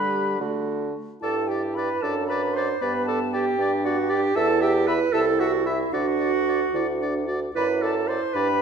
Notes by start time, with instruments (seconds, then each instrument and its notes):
Already playing: bassoon D3, french horn G3, clarinet G4, oboe B4, flute B5
0.39 bassoon D3, french horn A3, clarinet F#4
1.21 bassoon G2, french horn E4, clarinet A4, oboe D5, flute A5
1.48 clarinet G4, oboe D5, flute G5
1.74 clarinet B4, oboe D5, flute B5
2.01 bassoon F#2, french horn D4, clarinet A4, oboe D5, flute A5
2.27 clarinet B4, oboe D5, flute B5
2.53 clarinet C5, flute C6
2.57 oboe D5
2.80 bassoon G2, french horn B3, clarinet B4, oboe D5, flute B5
3.06 clarinet A4, oboe D5, flute A5
3.33 clarinet G4, oboe D5, flute G5
3.58 bassoon G2, french horn D4, oboe D5
3.84 clarinet F#4, oboe D5, flute F#5
4.09 clarinet G4, oboe D5, flute G5
4.35 bassoon E2, french horn E4, clarinet A4, oboe E5, flute A5
4.61 clarinet G4, oboe E5, flute G5
4.87 clarinet B4, oboe E5, flute B5
5.13 bassoon C2, french horn E4, clarinet A4, oboe E5, flute A5
5.39 clarinet F#4, oboe E5, flute F#5
5.66 clarinet E4, oboe E5, flute E5
5.92 bassoon D2, french horn D4, clarinet F#4, oboe D5, flute F#5
6.20 oboe D5
6.49 oboe D5
6.73 bassoon D2, french horn E4, oboe D5
7.01 french horn D4, oboe D5
7.28 french horn F#4, oboe D5
7.55 bassoon F#2, french horn E4, clarinet B4, oboe D5, flute B5
7.82 clarinet A4, oboe D5, flute A5
8.08 clarinet C5, oboe D5, flute C6
8.34 bassoon G2, french horn D4, clarinet B4, oboe D5, flute B5